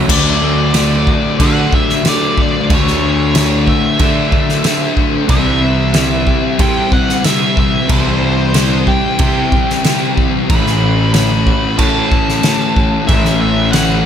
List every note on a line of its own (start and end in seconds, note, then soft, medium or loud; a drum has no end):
0.07 1.09 D2 loud
0.07 0.72 D3 loud
0.07 1.39 F#3 medium
0.07 0.44 A3 loud
0.07 0.42 A3 medium
0.07 0.41 D4 loud
0.07 kick loud
0.07 crash loud
0.07 crash medium
0.11 1.44 D5 loud
0.41 1.71 A3 medium
0.41 0.73 A3 medium
0.41 0.75 D4 medium
0.72 1.37 D3 medium
0.72 1.39 A3 medium
0.72 1.40 D4 medium
0.72 snare loud
0.72 crash medium
1.07 2.70 F#4 medium
1.07 kick medium
1.38 2.01 D3 medium
1.38 1.65 D3 loud
1.38 2.68 F#3 medium
1.38 2.03 A3 medium
1.38 2.05 D4 loud
1.38 1.74 F#5 loud
1.38 kick loud
1.38 crash medium
1.72 2.36 A3 medium
1.72 2.07 E5 medium
1.72 kick loud
1.89 snare soft
2.03 2.67 D3 medium
2.03 2.68 A3 medium
2.03 2.70 D4 medium
2.03 snare loud
2.03 crash medium
2.09 2.40 D5 medium
2.37 2.69 A3 medium
2.37 kick medium
2.42 2.73 D5 medium
2.68 3.70 D2 loud
2.68 3.33 D3 loud
2.68 3.98 F#3 loud
2.68 3.04 A3 loud
2.68 3.01 A3 medium
2.68 3.00 D4 loud
2.68 kick loud
2.68 crash medium
2.75 3.73 C#5 medium
2.87 snare soft
3.02 4.32 A3 medium
3.02 3.35 A3 medium
3.02 3.36 D4 medium
3.34 3.96 D3 medium
3.34 3.99 A3 medium
3.34 4.00 D4 medium
3.34 snare loud
3.34 crash medium
3.66 5.30 F#4 medium
3.66 4.94 E5 loud
3.66 kick medium
3.98 4.63 D3 medium
3.98 4.25 D3 loud
3.98 5.28 F#3 medium
3.98 4.65 A3 medium
3.98 4.66 D4 medium
3.98 kick loud
3.98 crash medium
4.32 4.97 A3 medium
4.32 kick medium
4.49 snare soft
4.64 5.27 D3 medium
4.64 5.29 A3 medium
4.64 5.29 D4 medium
4.64 snare loud
4.64 crash medium
4.97 5.30 A3 medium
4.97 kick medium
5.29 6.29 C2 loud
5.29 5.93 C3 medium
5.29 7.57 E3 medium
5.29 5.64 G3 loud
5.29 5.61 C4 loud
5.29 6.60 E4 loud
5.29 6.61 E5 loud
5.29 kick loud
5.29 crash medium
5.62 5.94 G3 medium
5.62 5.96 C4 medium
5.93 6.57 C3 medium
5.93 6.59 G3 medium
5.93 6.60 C4 medium
5.93 6.61 E4 medium
5.93 snare loud
5.93 crash medium
6.27 7.90 G4 medium
6.27 kick medium
6.58 7.20 C3 medium
6.58 6.85 C3 loud
6.58 7.22 G3 medium
6.58 7.23 C4 loud
6.58 7.90 E4 medium
6.58 7.25 E4 medium
6.58 6.93 G5 loud
6.58 kick loud
6.58 crash medium
6.92 7.25 F#5 loud
6.92 kick medium
7.09 snare soft
7.22 7.86 C3 medium
7.22 7.87 G3 medium
7.22 7.90 C4 medium
7.22 8.55 E4 medium
7.22 7.58 E5 loud
7.22 snare loud
7.22 crash medium
7.57 7.89 E3 medium
7.57 7.92 E5 loud
7.57 kick medium
7.87 8.89 C2 loud
7.87 8.51 C3 medium
7.87 10.16 E3 medium
7.87 8.22 G3 loud
7.87 8.19 C4 medium
7.87 9.21 E4 loud
7.87 kick loud
7.87 crash medium
7.92 8.91 C5 medium
8.20 8.53 G3 medium
8.20 8.55 C4 medium
8.53 9.16 C3 medium
8.53 9.18 G3 medium
8.53 9.20 C4 medium
8.53 9.19 E4 medium
8.53 snare loud
8.53 crash medium
8.87 10.50 G4 medium
8.87 10.14 G5 medium
8.87 kick medium
9.18 9.82 C3 medium
9.18 9.45 C3 loud
9.18 9.84 G3 medium
9.18 9.85 C4 medium
9.18 9.85 E4 medium
9.18 10.50 E4 medium
9.18 kick loud
9.18 crash medium
9.52 kick loud
9.70 snare soft
9.83 10.47 C3 medium
9.83 10.48 G3 medium
9.83 10.49 C4 medium
9.83 11.14 E4 medium
9.83 snare loud
9.83 crash medium
10.16 10.49 E3 medium
10.16 kick medium
10.49 11.49 A1 loud
10.49 11.12 A2 medium
10.49 12.76 E3 medium
10.49 10.84 E3 medium
10.49 10.80 A3 loud
10.49 11.80 C#4 loud
10.49 11.81 E4 loud
10.49 11.13 B5 medium
10.49 kick loud
10.49 crash medium
10.67 snare soft
10.80 11.16 A3 medium
10.80 12.11 A3 medium
10.84 11.14 E3 medium
11.13 11.76 A2 medium
11.13 11.79 E3 medium
11.13 11.80 A3 medium
11.13 11.78 C#4 medium
11.13 11.78 B5 loud
11.13 snare loud
11.13 crash medium
11.47 13.13 F#4 medium
11.47 kick medium
11.77 12.40 A2 medium
11.77 12.04 A2 loud
11.77 12.43 E3 medium
11.77 12.45 A3 medium
11.77 12.43 C#4 medium
11.77 13.10 C#4 medium
11.77 13.13 A5 loud
11.77 kick loud
11.77 crash medium
11.81 13.10 E4 medium
12.12 13.41 A3 medium
12.12 kick loud
12.29 snare soft
12.42 13.05 A2 medium
12.42 13.08 E3 medium
12.42 13.74 C#4 medium
12.42 snare loud
12.42 crash medium
12.46 13.09 A3 medium
12.76 13.09 E3 medium
12.76 kick medium
13.06 14.06 A1 loud
13.06 13.70 A2 medium
13.06 13.42 E3 loud
13.06 14.06 E3 medium
13.06 13.38 A3 loud
13.06 14.06 C#4 loud
13.06 14.06 E4 loud
13.06 13.40 E5 medium
13.06 kick loud
13.06 crash medium
13.25 snare soft
13.38 13.72 E3 medium
13.38 13.73 A3 medium
13.38 14.06 A3 medium
13.38 13.72 E5 medium
13.71 14.06 A2 medium
13.71 14.06 E3 medium
13.71 14.06 A3 medium
13.71 14.06 C#4 medium
13.71 14.06 F#5 medium
13.71 snare loud
13.71 crash medium